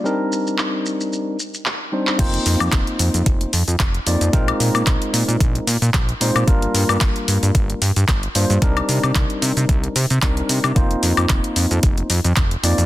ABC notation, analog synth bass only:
X:1
M:4/4
L:1/16
Q:"Swing 16ths" 1/4=112
K:Cm
V:1 name="Analog synth bass" clef=bass
z16 | F,,, z F,, F,, F,,, z F,, F,, F,,, z F,, F,, F,,, z F,, F,, | B,,, z B,, B,, B,,, z B,, B,, B,,, z B,, B,, B,,, z B,, B,, | G,,, z G,, G,, G,,, z G,, G,, G,,, z G,, G,, G,,, z G,, G,, |
C,, z C, C, C,, z C, C, C,, z C, C, C,, z C, C, | F,,, z F,, F,, F,,, z F,, F,, F,,, z F,, F,, F,,, z F,, F,, |]